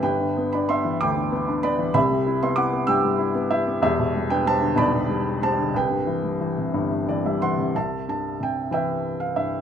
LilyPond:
<<
  \new Staff \with { instrumentName = "Felt piano" } { \time 6/8 \key c \lydian \tempo 4. = 63 << { g''8. b''16 c'''8 d'''8. r16 b''8 | b''8. c'''16 d'''8 e'''8. r16 e''8 | e''8. g''16 a''8 b''4 a''8 | g''2 d''16 e''16 <fis'' c'''>8 |
\key c \major a''8 a''8 g''8 g''8. f''16 e''8 | } \\ { b'8. d''16 e''8 g''8. r16 d''8 | e''8. e''16 fis''8 g''8. r16 g'8 | g'8. b'16 c''8 d''4 c''8 | b'2 r4 |
e''4. <b' e''>4. | } >> }
  \new Staff \with { instrumentName = "Felt piano" } { \clef bass \time 6/8 \key c \lydian <g,, g,>16 d16 b16 d'16 b16 e16 <d, d>16 d16 b16 d'16 b16 e16 | <c, c>16 g16 e'16 b16 e'16 b16 <g, g>16 g16 e'16 b16 e'16 b16 | <e,, e,>16 b,16 g16 d'16 g16 d16 <b,, b,>16 b,16 g8 g16 d16 | c,16 g,16 e16 g16 e16 c16 <g,, g,>16 g,16 e16 g16 e16 c16 |
\key c \major c,8 g,8 c8 e4 g,8 | }
>>